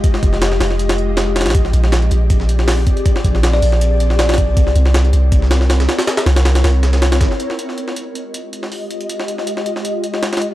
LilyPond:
<<
  \new Staff \with { instrumentName = "Kalimba" } { \time 4/4 \key f \dorian \tempo 4 = 159 r1 | r1 | r4 r16 d''8 r4 r16 d''4 | r1 |
r1 | r1 | r1 | }
  \new Staff \with { instrumentName = "Ambient pad" } { \time 4/4 \key f \dorian r1 | r1 | r1 | r1 |
r1 | <aes f' g' ees''>1~ | <aes f' g' ees''>1 | }
  \new Staff \with { instrumentName = "808-style bass" } { \clef bass \time 4/4 \key f \dorian r8 f,,4 f,,2~ f,,16 bes,,16~ | bes,,8 bes,,4 bes,,2 r8 | r8 bes,,4 bes,,2~ bes,,16 c,16~ | c,8 c,4 c,2 r8 |
r8 c,4 c,4. g,,16 r8. | r1 | r1 | }
  \new DrumStaff \with { instrumentName = "Drums" } \drummode { \time 4/4 <hh bd>16 sn16 <hh bd>16 sn16 <hh sn>16 sn16 <hh hho sn>16 sn16 hh16 <hh sn>16 hh8 <hh sn>8 <hh sn>32 <hh sn>32 <hh sn>32 <hh sn>32 | <hh bd>16 sn16 hh16 sn16 <hh sn>16 hh16 hh8 <hh bd>16 sn16 hh16 sn16 <hh hho sn>8 <hh bd>16 hh16 | <hh bd>16 sn16 <hh bd>16 sn16 <hh sn>16 sn16 <hh hho>16 sn16 hh8 hh16 sn16 <hh sn>16 <hh sn>32 <hh sn>32 <hh bd>8 | <hh bd>16 sn16 hh16 sn16 <hh sn>16 hh16 hh8 <hh bd>16 sn16 <hh sn>16 sn16 <hh hho sn>16 <hh sn>16 <hh sn>16 <hh hho sn>16 |
<hh sn>16 <hh sn>16 <hh hho sn>16 <hh sn>16 <hh sn>16 <hh sn>16 <hh hho sn>8 <hh sn>16 <hh sn>16 <hh sn>16 <hh sn>16 <hh bd sn>16 sn16 hh16 sn16 | hh16 sn16 hh16 sn16 hh8 hh8 hh8 hh16 sn16 hho8 hh16 hh16 | hh16 sn16 hh16 sn16 hh16 sn16 hh16 sn16 hh8 hh16 sn16 <hh sn>16 <hh sn>32 <hh sn>32 hh8 | }
>>